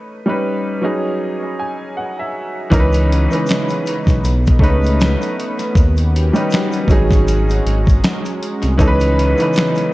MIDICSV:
0, 0, Header, 1, 5, 480
1, 0, Start_track
1, 0, Key_signature, 4, "minor"
1, 0, Tempo, 759494
1, 1718, Time_signature, 4, 2, 24, 8
1, 6280, End_track
2, 0, Start_track
2, 0, Title_t, "Upright piano"
2, 0, Program_c, 0, 0
2, 0, Control_c, 0, 64, 127
2, 161, Note_on_c, 0, 55, 80
2, 169, Note_on_c, 0, 61, 65
2, 176, Note_on_c, 0, 63, 64
2, 184, Note_on_c, 0, 71, 85
2, 495, Note_off_c, 0, 55, 0
2, 499, Note_off_c, 0, 61, 0
2, 502, Note_off_c, 0, 63, 0
2, 506, Note_off_c, 0, 71, 0
2, 514, Note_on_c, 0, 54, 84
2, 522, Note_on_c, 0, 61, 73
2, 528, Control_c, 0, 64, 0
2, 530, Note_on_c, 0, 63, 76
2, 535, Note_on_c, 0, 68, 83
2, 640, Control_c, 0, 64, 127
2, 1007, Note_on_c, 0, 80, 67
2, 1226, Note_off_c, 0, 80, 0
2, 1244, Note_on_c, 0, 78, 68
2, 1367, Note_off_c, 0, 78, 0
2, 1386, Note_on_c, 0, 76, 62
2, 1429, Note_off_c, 0, 54, 0
2, 1433, Note_off_c, 0, 61, 0
2, 1437, Note_off_c, 0, 63, 0
2, 1440, Note_off_c, 0, 68, 0
2, 1701, Note_off_c, 0, 76, 0
2, 1708, Note_on_c, 0, 52, 103
2, 1716, Note_on_c, 0, 61, 99
2, 1722, Note_on_c, 0, 63, 102
2, 1727, Control_c, 0, 64, 0
2, 1729, Note_on_c, 0, 70, 96
2, 1770, Note_off_c, 0, 70, 0
2, 1770, Note_on_c, 0, 71, 107
2, 1824, Control_c, 0, 64, 127
2, 2065, Note_off_c, 0, 52, 0
2, 2069, Note_off_c, 0, 61, 0
2, 2072, Note_off_c, 0, 63, 0
2, 2088, Note_on_c, 0, 52, 73
2, 2096, Note_off_c, 0, 71, 0
2, 2096, Note_on_c, 0, 61, 69
2, 2103, Note_on_c, 0, 63, 59
2, 2111, Note_on_c, 0, 71, 77
2, 2676, Note_off_c, 0, 52, 0
2, 2680, Note_off_c, 0, 61, 0
2, 2684, Note_off_c, 0, 63, 0
2, 2686, Control_c, 0, 64, 0
2, 2688, Note_off_c, 0, 71, 0
2, 2811, Control_c, 0, 64, 127
2, 2906, Note_on_c, 0, 57, 77
2, 2915, Note_on_c, 0, 61, 76
2, 2922, Note_on_c, 0, 63, 84
2, 2930, Note_on_c, 0, 71, 98
2, 3633, Note_off_c, 0, 57, 0
2, 3637, Note_off_c, 0, 61, 0
2, 3641, Note_off_c, 0, 63, 0
2, 3645, Note_off_c, 0, 71, 0
2, 3646, Control_c, 0, 64, 0
2, 3748, Control_c, 0, 64, 127
2, 4004, Note_on_c, 0, 55, 83
2, 4012, Note_on_c, 0, 61, 77
2, 4018, Note_on_c, 0, 63, 80
2, 4026, Note_on_c, 0, 71, 84
2, 4336, Note_off_c, 0, 55, 0
2, 4340, Note_off_c, 0, 61, 0
2, 4343, Note_off_c, 0, 63, 0
2, 4347, Note_off_c, 0, 71, 0
2, 4350, Note_on_c, 0, 54, 88
2, 4357, Note_on_c, 0, 61, 77
2, 4365, Note_on_c, 0, 63, 78
2, 4366, Control_c, 0, 64, 0
2, 4373, Note_on_c, 0, 68, 93
2, 4483, Control_c, 0, 64, 127
2, 5267, Note_off_c, 0, 54, 0
2, 5271, Note_off_c, 0, 61, 0
2, 5275, Note_off_c, 0, 63, 0
2, 5278, Note_off_c, 0, 68, 0
2, 5545, Note_on_c, 0, 52, 101
2, 5553, Note_on_c, 0, 61, 103
2, 5562, Note_on_c, 0, 63, 102
2, 5567, Control_c, 0, 64, 0
2, 5571, Note_on_c, 0, 69, 84
2, 5608, Note_on_c, 0, 71, 127
2, 5611, Note_off_c, 0, 69, 0
2, 5661, Control_c, 0, 64, 127
2, 5904, Note_off_c, 0, 52, 0
2, 5908, Note_off_c, 0, 61, 0
2, 5912, Note_off_c, 0, 63, 0
2, 5932, Note_on_c, 0, 52, 75
2, 5936, Note_off_c, 0, 71, 0
2, 5940, Note_on_c, 0, 61, 64
2, 5946, Note_on_c, 0, 63, 67
2, 5954, Note_on_c, 0, 71, 90
2, 6280, Note_off_c, 0, 52, 0
2, 6280, Note_off_c, 0, 61, 0
2, 6280, Note_off_c, 0, 63, 0
2, 6280, Note_off_c, 0, 71, 0
2, 6280, End_track
3, 0, Start_track
3, 0, Title_t, "Analog synth pad"
3, 0, Program_c, 1, 89
3, 1720, Note_on_c, 1, 49, 91
3, 1720, Note_on_c, 1, 52, 104
3, 1720, Note_on_c, 1, 59, 83
3, 1720, Note_on_c, 1, 63, 88
3, 1721, Note_on_c, 1, 56, 84
3, 2670, Note_off_c, 1, 49, 0
3, 2670, Note_off_c, 1, 52, 0
3, 2670, Note_off_c, 1, 56, 0
3, 2679, Note_on_c, 1, 57, 79
3, 3620, Note_off_c, 1, 63, 0
3, 3629, Note_off_c, 1, 57, 0
3, 3643, Note_on_c, 1, 66, 87
3, 3643, Note_on_c, 1, 67, 100
3, 3644, Note_on_c, 1, 61, 91
3, 3645, Note_on_c, 1, 51, 85
3, 4334, Note_off_c, 1, 59, 0
3, 4354, Note_off_c, 1, 67, 0
3, 4355, Note_off_c, 1, 51, 0
3, 4355, Note_on_c, 1, 56, 92
3, 5542, Note_off_c, 1, 61, 0
3, 5542, Note_off_c, 1, 66, 0
3, 5555, Note_on_c, 1, 49, 91
3, 5555, Note_on_c, 1, 59, 84
3, 5555, Note_on_c, 1, 63, 90
3, 5556, Note_on_c, 1, 52, 94
3, 6280, Note_off_c, 1, 49, 0
3, 6280, Note_off_c, 1, 52, 0
3, 6280, Note_off_c, 1, 56, 0
3, 6280, Note_off_c, 1, 59, 0
3, 6280, Note_off_c, 1, 63, 0
3, 6280, End_track
4, 0, Start_track
4, 0, Title_t, "Analog synth bass"
4, 0, Program_c, 2, 38
4, 1720, Note_on_c, 2, 37, 103
4, 2071, Note_off_c, 2, 37, 0
4, 2573, Note_on_c, 2, 35, 96
4, 2672, Note_off_c, 2, 35, 0
4, 2681, Note_on_c, 2, 35, 106
4, 2899, Note_off_c, 2, 35, 0
4, 2903, Note_on_c, 2, 37, 100
4, 3263, Note_off_c, 2, 37, 0
4, 3637, Note_on_c, 2, 39, 106
4, 3990, Note_off_c, 2, 39, 0
4, 4348, Note_on_c, 2, 32, 106
4, 4808, Note_off_c, 2, 32, 0
4, 4838, Note_on_c, 2, 32, 95
4, 5064, Note_off_c, 2, 32, 0
4, 5455, Note_on_c, 2, 36, 85
4, 5552, Note_off_c, 2, 36, 0
4, 5555, Note_on_c, 2, 37, 110
4, 5909, Note_off_c, 2, 37, 0
4, 6280, End_track
5, 0, Start_track
5, 0, Title_t, "Drums"
5, 1717, Note_on_c, 9, 36, 110
5, 1721, Note_on_c, 9, 82, 74
5, 1728, Note_on_c, 9, 42, 72
5, 1781, Note_off_c, 9, 36, 0
5, 1784, Note_off_c, 9, 82, 0
5, 1792, Note_off_c, 9, 42, 0
5, 1848, Note_on_c, 9, 82, 50
5, 1860, Note_on_c, 9, 42, 55
5, 1911, Note_off_c, 9, 82, 0
5, 1923, Note_off_c, 9, 42, 0
5, 1975, Note_on_c, 9, 42, 64
5, 2038, Note_off_c, 9, 42, 0
5, 2092, Note_on_c, 9, 82, 51
5, 2105, Note_on_c, 9, 42, 44
5, 2155, Note_off_c, 9, 82, 0
5, 2168, Note_off_c, 9, 42, 0
5, 2190, Note_on_c, 9, 82, 78
5, 2207, Note_on_c, 9, 42, 92
5, 2217, Note_on_c, 9, 38, 99
5, 2222, Note_on_c, 9, 26, 95
5, 2254, Note_off_c, 9, 82, 0
5, 2270, Note_off_c, 9, 42, 0
5, 2280, Note_off_c, 9, 38, 0
5, 2285, Note_off_c, 9, 26, 0
5, 2330, Note_on_c, 9, 82, 50
5, 2341, Note_on_c, 9, 42, 46
5, 2394, Note_off_c, 9, 82, 0
5, 2404, Note_off_c, 9, 42, 0
5, 2439, Note_on_c, 9, 82, 46
5, 2447, Note_on_c, 9, 42, 70
5, 2502, Note_off_c, 9, 82, 0
5, 2511, Note_off_c, 9, 42, 0
5, 2572, Note_on_c, 9, 36, 95
5, 2577, Note_on_c, 9, 82, 64
5, 2590, Note_on_c, 9, 42, 51
5, 2635, Note_off_c, 9, 36, 0
5, 2640, Note_off_c, 9, 82, 0
5, 2654, Note_off_c, 9, 42, 0
5, 2682, Note_on_c, 9, 82, 75
5, 2685, Note_on_c, 9, 42, 72
5, 2745, Note_off_c, 9, 82, 0
5, 2748, Note_off_c, 9, 42, 0
5, 2818, Note_on_c, 9, 82, 45
5, 2827, Note_on_c, 9, 42, 46
5, 2830, Note_on_c, 9, 36, 93
5, 2881, Note_off_c, 9, 82, 0
5, 2890, Note_off_c, 9, 42, 0
5, 2893, Note_off_c, 9, 36, 0
5, 2902, Note_on_c, 9, 36, 100
5, 2930, Note_on_c, 9, 42, 61
5, 2966, Note_off_c, 9, 36, 0
5, 2993, Note_off_c, 9, 42, 0
5, 3058, Note_on_c, 9, 82, 44
5, 3075, Note_on_c, 9, 42, 51
5, 3121, Note_off_c, 9, 82, 0
5, 3138, Note_off_c, 9, 42, 0
5, 3161, Note_on_c, 9, 82, 68
5, 3166, Note_on_c, 9, 42, 69
5, 3170, Note_on_c, 9, 38, 115
5, 3176, Note_on_c, 9, 26, 94
5, 3224, Note_off_c, 9, 82, 0
5, 3229, Note_off_c, 9, 42, 0
5, 3233, Note_off_c, 9, 38, 0
5, 3239, Note_off_c, 9, 26, 0
5, 3295, Note_on_c, 9, 82, 48
5, 3305, Note_on_c, 9, 42, 46
5, 3358, Note_off_c, 9, 82, 0
5, 3368, Note_off_c, 9, 42, 0
5, 3410, Note_on_c, 9, 42, 59
5, 3474, Note_off_c, 9, 42, 0
5, 3534, Note_on_c, 9, 42, 46
5, 3535, Note_on_c, 9, 82, 48
5, 3598, Note_off_c, 9, 42, 0
5, 3598, Note_off_c, 9, 82, 0
5, 3637, Note_on_c, 9, 36, 107
5, 3643, Note_on_c, 9, 82, 74
5, 3648, Note_on_c, 9, 42, 73
5, 3700, Note_off_c, 9, 36, 0
5, 3706, Note_off_c, 9, 82, 0
5, 3711, Note_off_c, 9, 42, 0
5, 3770, Note_on_c, 9, 82, 50
5, 3778, Note_on_c, 9, 42, 53
5, 3833, Note_off_c, 9, 82, 0
5, 3841, Note_off_c, 9, 42, 0
5, 3894, Note_on_c, 9, 42, 64
5, 3957, Note_off_c, 9, 42, 0
5, 4011, Note_on_c, 9, 82, 46
5, 4019, Note_on_c, 9, 42, 49
5, 4074, Note_off_c, 9, 82, 0
5, 4082, Note_off_c, 9, 42, 0
5, 4108, Note_on_c, 9, 82, 74
5, 4122, Note_on_c, 9, 42, 94
5, 4132, Note_on_c, 9, 38, 105
5, 4138, Note_on_c, 9, 26, 88
5, 4172, Note_off_c, 9, 82, 0
5, 4186, Note_off_c, 9, 42, 0
5, 4196, Note_off_c, 9, 38, 0
5, 4201, Note_off_c, 9, 26, 0
5, 4247, Note_on_c, 9, 82, 54
5, 4257, Note_on_c, 9, 42, 46
5, 4310, Note_off_c, 9, 82, 0
5, 4320, Note_off_c, 9, 42, 0
5, 4347, Note_on_c, 9, 36, 99
5, 4356, Note_on_c, 9, 82, 52
5, 4365, Note_on_c, 9, 42, 74
5, 4411, Note_off_c, 9, 36, 0
5, 4419, Note_off_c, 9, 82, 0
5, 4428, Note_off_c, 9, 42, 0
5, 4491, Note_on_c, 9, 36, 94
5, 4496, Note_on_c, 9, 82, 67
5, 4508, Note_on_c, 9, 42, 51
5, 4554, Note_off_c, 9, 36, 0
5, 4559, Note_off_c, 9, 82, 0
5, 4571, Note_off_c, 9, 42, 0
5, 4599, Note_on_c, 9, 82, 80
5, 4603, Note_on_c, 9, 42, 72
5, 4662, Note_off_c, 9, 82, 0
5, 4666, Note_off_c, 9, 42, 0
5, 4735, Note_on_c, 9, 82, 44
5, 4745, Note_on_c, 9, 42, 50
5, 4799, Note_off_c, 9, 82, 0
5, 4808, Note_off_c, 9, 42, 0
5, 4845, Note_on_c, 9, 42, 60
5, 4908, Note_off_c, 9, 42, 0
5, 4975, Note_on_c, 9, 36, 96
5, 4980, Note_on_c, 9, 82, 46
5, 4990, Note_on_c, 9, 42, 50
5, 5038, Note_off_c, 9, 36, 0
5, 5043, Note_off_c, 9, 82, 0
5, 5053, Note_off_c, 9, 42, 0
5, 5080, Note_on_c, 9, 42, 75
5, 5082, Note_on_c, 9, 82, 70
5, 5084, Note_on_c, 9, 38, 113
5, 5089, Note_on_c, 9, 26, 101
5, 5143, Note_off_c, 9, 42, 0
5, 5145, Note_off_c, 9, 82, 0
5, 5147, Note_off_c, 9, 38, 0
5, 5152, Note_off_c, 9, 26, 0
5, 5214, Note_on_c, 9, 82, 47
5, 5220, Note_on_c, 9, 42, 47
5, 5277, Note_off_c, 9, 82, 0
5, 5283, Note_off_c, 9, 42, 0
5, 5325, Note_on_c, 9, 42, 65
5, 5388, Note_off_c, 9, 42, 0
5, 5451, Note_on_c, 9, 42, 46
5, 5451, Note_on_c, 9, 82, 46
5, 5514, Note_off_c, 9, 42, 0
5, 5514, Note_off_c, 9, 82, 0
5, 5555, Note_on_c, 9, 36, 108
5, 5558, Note_on_c, 9, 82, 76
5, 5564, Note_on_c, 9, 42, 78
5, 5618, Note_off_c, 9, 36, 0
5, 5622, Note_off_c, 9, 82, 0
5, 5628, Note_off_c, 9, 42, 0
5, 5687, Note_on_c, 9, 82, 53
5, 5695, Note_on_c, 9, 42, 57
5, 5751, Note_off_c, 9, 82, 0
5, 5759, Note_off_c, 9, 42, 0
5, 5809, Note_on_c, 9, 42, 67
5, 5872, Note_off_c, 9, 42, 0
5, 5927, Note_on_c, 9, 82, 48
5, 5941, Note_on_c, 9, 42, 45
5, 5990, Note_off_c, 9, 82, 0
5, 6004, Note_off_c, 9, 42, 0
5, 6025, Note_on_c, 9, 82, 70
5, 6043, Note_on_c, 9, 42, 85
5, 6053, Note_on_c, 9, 38, 103
5, 6058, Note_on_c, 9, 26, 95
5, 6088, Note_off_c, 9, 82, 0
5, 6106, Note_off_c, 9, 42, 0
5, 6116, Note_off_c, 9, 38, 0
5, 6121, Note_off_c, 9, 26, 0
5, 6163, Note_on_c, 9, 82, 56
5, 6179, Note_on_c, 9, 42, 49
5, 6226, Note_off_c, 9, 82, 0
5, 6243, Note_off_c, 9, 42, 0
5, 6280, End_track
0, 0, End_of_file